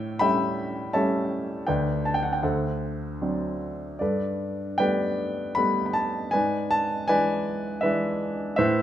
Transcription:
grand piano
Already playing: A2 C#5 E5 G5
0.19 G3 A3 C#4 E5 G5 B5
0.93 G3 A3 C#4 C#5 E5 A5
1.67 D2 B4 D5 G5
2.05 A5
2.14 G5
2.23 F#5
2.33 G5
2.43 D2 A4 C5 F#5
3.21 F#3 C4 D4
3.99 G2 A4 B4 D5
4.78 G3 A3 B3 B4 D5 G5
5.55 G3 A3 B3 B5
5.86 B5
5.93 A5
6.31 G#2 B4 D5 G#5
6.71 A5
7.08 E3 G#3 D4 B4 D5 G#5
7.81 E3 G#3 D4 B4 E5
8.56 A2 B4 C5 E5

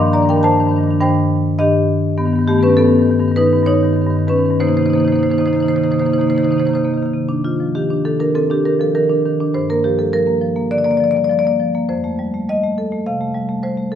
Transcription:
marimba
Already playing: G2 D#5 C6
0.00 D#3 D4
0.06 G2 D4
0.12 D#3 D4 D5 A#5
0.16 G2
0.22 G2 D#3 D4
0.29 D#3 D4 A#4 G5
0.36 G2 D4
0.41 D#3 D4 C5 A5
0.47 G2
0.51 D#3 D4
0.57 G2 D#3 D4
0.67 G2 D#3 D4
0.76 G2 D4
0.81 D#3 D4
0.88 G2 D#3 D4
1.00 G2 D#3 D4 C5 G5
1.59 G2 D#3 D4 G4 D#5
2.18 G2 D#3 B3
2.25 G2 D#3 B3
2.33 D#3 B3
2.38 G2 D#3
2.44 B3 G4
2.48 G2 D#3 A3
2.53 B3
2.58 G2 D#3 B3
2.63 D#3 C#4 B4
2.68 G2 B3
2.76 G2 D#3 B3 A4
2.84 G2 D#3
2.93 D#3
2.99 G2 D#3
3.10 G2 D#3
3.20 G2 D#3
3.28 G2 D#3
3.36 D#3 D#4 B4
3.42 G2
3.46 D#3
3.52 G2
3.57 D#3
3.63 G2 D#3 C#5
3.67 D#4
3.74 G2 D#3
3.83 G2 D#3
3.93 G2 D#3
4.02 D#3
4.07 G2 D#3
4.17 G2 D#3
4.27 G2 D#3 C#4 B4
4.37 G2 D#3
4.45 D#3
4.50 G2
4.60 C3 D#3 A#3 D#4 C5
4.68 C3 D#3 A#3 D#4 C5
4.75 C3 D#3 A#3 D#4 C5
4.82 C3 D#3 A#3 D#4 C5
4.90 C3 D#4 C5
4.95 D#3 A#3 D#4
5.00 C3 A#3 C5
5.05 D#3 D#4 C5
5.12 C3 D#3 A#3 D#4 C5
5.19 C3 D#3 A#3 D#4 C5
5.26 D#3 A#3 D#4
5.31 C3 D#4 C5
5.38 C3 D#3 A#3 D#4 C5
5.46 C3 D#3 A#3 D#4 C5
5.53 C3 D#3 D#4 C5
5.57 A#3 C5
5.63 D#3 A#3 D#4
5.67 C3 D#4 C5
5.73 C3 D#3 A#3 C5
5.78 D#4
5.82 C3 D#3 A#3 D#4 C5
5.91 C3 D#3 A#3 D#4 C5
5.98 D#3 A#3 D#4 C5
6.03 C3 D#4 C5
6.09 C3 D#3 A#3
6.13 D#4 C5
6.18 C3 D#3 A#3 D#4 C5
6.27 C3 D#3 A#3 D#4 C5
6.35 D#3 A#3 D#4 C5
6.39 C3 A#3 D#4
6.44 C3 D#3 C5
6.51 D#3 A#3 D#4 C5
6.57 C3 A#3 D#4 C5
6.63 D#3 D#4
6.67 C3 A#3 C5
6.71 D#3 D#4
6.75 C3 A#3 C5
6.79 D#3
6.85 C3 D#3 A#3
6.94 C3 D#3 A#3
7.02 C3 D#3 A#3
7.14 C3
7.29 D4
7.44 D#3 F4
7.60 F3
7.75 D#3 G4
7.90 D4
8.05 D#3 A4
8.19 D4 A#4
8.35 C4 A4
8.50 D4 G4
8.65 D#3 A#4
8.80 F3 A4
8.95 D#3 A#4
9.09 D4
9.26 D#3
9.40 D4
9.54 G2 C5
9.70 A#3 A#4
9.84 F3 G4
9.98 G3 A4
10.13 F3 A#4
10.27 A#3
10.41 F3
10.56 A#3
10.71 D3 D5
10.78 D5
10.84 A#3 D5
10.91 D5
10.97 F3 D5
11.04 D5
11.11 G3 D5
11.17 D5
11.24 D5
11.30 F3 D5
11.39 D5
11.45 A#3 D5
11.60 F3
11.75 A#3
11.89 F2 C5
12.04 A3
12.19 G3
12.34 A3
12.49 G3 D#5
12.63 A3
12.78 A4
12.92 A3
13.06 C3 F5
13.21 A3
13.34 G3
13.49 A3
13.63 G3 C5
13.77 A3
13.92 A4

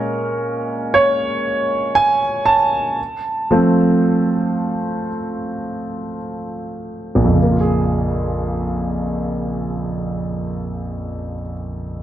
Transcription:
grand piano
Already playing: A#2 G#3 C#4 A#4
0.94 C#5
1.95 G#5
2.46 A5
3.51 F3 A3 C4
7.15 A#1
7.24 F2
7.33 C#3
7.42 A#3
7.52 F4
7.61 G#4

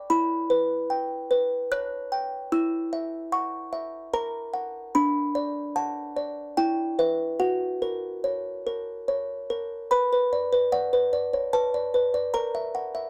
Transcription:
music box
Already playing: D5
0.10 E4 B5
0.50 B4
0.90 G5
1.31 B4
1.72 C#5 F#6
2.12 G5
2.52 E4 E6
2.93 E5
3.32 F#5 C#6
3.73 E5
4.13 A#4 A#5
4.54 F#5
4.95 D4 B5
5.35 D5
5.76 F#5 A5
6.17 D5
6.57 E4 G5
6.99 B4 E5
7.40 F#4 F#5
7.82 A#4
8.24 C#5
8.67 A#4
9.08 C#5
9.50 A#4
9.91 B4 B5
10.13 B4
10.33 D5
10.53 B4
10.72 D5 F#5
10.93 B4
11.13 D5
11.33 C#5
11.53 B4 A5
11.74 D5
11.94 B4
12.14 D5
12.34 A#4 A#5
12.55 E5
12.75 F#5
12.95 E5

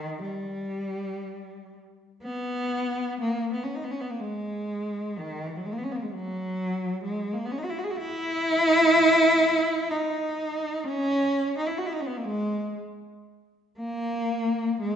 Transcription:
cello
Already playing: D#3
0.24 G3
2.22 B3
3.21 A#3
3.53 B3
3.63 C#4
3.75 D#4
3.84 B3
3.91 C#4
4.00 B3
4.10 A#3
4.20 G#3
5.17 D#3
5.46 E3
5.56 F#3
5.65 G#3
5.73 A#3
5.78 B3
5.83 C#4
5.92 A#3 B3
6.02 G#3
6.13 F#3
7.04 G#3
7.33 A#3
7.45 B3
7.51 C#4
7.58 D#4
7.64 F#4
7.70 E4
7.78 F#4
7.84 G#4
7.90 F#4
7.97 E4
9.90 D#4
10.84 C#4
11.58 D#4
11.67 E4
11.78 F#4
11.86 E4
11.93 D#4
12.00 C#4
12.07 B3
12.17 A#3
12.25 G#3
13.78 A#3
14.82 G#3

